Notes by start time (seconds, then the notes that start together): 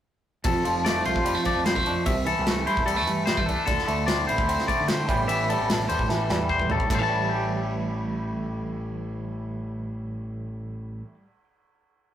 0.44 F1 F2 A4, kick, ride
0.65 F1 F3, ride
0.85 A3 D5, snare, ride
1.05 C2 F4 C5, ride
1.16 F1, kick
1.25 G3, ride
1.35 A3
1.44 F3 D5, kick, ride
1.56 F2
1.65 G3 C5, snare, ride
1.75 A3, kick
1.86 F2 D4, ride
2.06 C2 C3 E5, kick, ride
2.25 E3 A4, ride
2.39 C2
2.47 A3, snare, ride
2.66 G2 E4 C5, ride
2.77 C2, kick
2.86 G3 A4, ride
2.96 A3
3.06 G2 E3, ride
3.26 G3 C5, snare, ride
3.37 A3, kick
3.46 C2 D4 A4, ride
3.66 D2 D3 A4, kick, ride
3.79 snare
3.87 D2 A3, ride
4.07 C4 D5, snare, ride
4.27 A1 E4 C5, ride
4.38 D2, kick
4.48 C4, ride
4.59 snare
4.68 A3 D5, kick, ride
4.81 D3
4.88 C4 C5, snare, ride
5.08 A1 A2 E3 G3 B3 G4, kick, ride
5.28 E3 E5, ride
5.49 G3 A4, ride
5.60 A1
5.70 A4, snare, ride
5.80 snare
5.89 E2 G3 C5, ride
5.99 A1, kick
6.09 E3 A4, snare
6.29 E2 G3, snare
6.49 C5, kick
6.59 kick
6.70 A1 A2 A4, floor tom
6.80 kick
6.89 A1 A2 A4, kick, ride bell
6.95 C5 E5
6.99 E3 A5
7.09 G3
7.29 G4